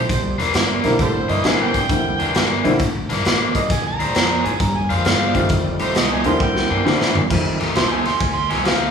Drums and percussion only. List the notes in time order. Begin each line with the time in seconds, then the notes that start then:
0.09 kick, closed hi-hat
0.40 snare, closed hi-hat
0.54 snare, closed hi-hat
0.84 snare, closed hi-hat
0.99 kick, closed hi-hat
1.29 closed hi-hat
1.44 snare, closed hi-hat
1.74 kick, closed hi-hat
1.89 kick, closed hi-hat
2.20 closed hi-hat
2.35 snare, closed hi-hat
2.65 closed hi-hat
2.79 kick, closed hi-hat
3.10 snare, closed hi-hat
3.25 snare, closed hi-hat
3.55 kick, closed hi-hat
3.70 kick, snare, closed hi-hat
4.00 closed hi-hat
4.15 snare, closed hi-hat
4.45 closed hi-hat
4.60 kick, closed hi-hat
4.90 closed hi-hat
5.05 snare, closed hi-hat
5.35 kick, closed hi-hat
5.49 kick, closed hi-hat
5.79 closed hi-hat
5.95 snare, closed hi-hat
6.24 closed hi-hat
6.40 kick
6.56 snare
6.87 snare
7.01 snare
7.15 floor tom
7.30 kick, snare, crash
7.61 snare, ride
7.75 snare, ride
8.05 snare, ride
8.20 kick, ride
8.50 snare, ride
8.65 snare, ride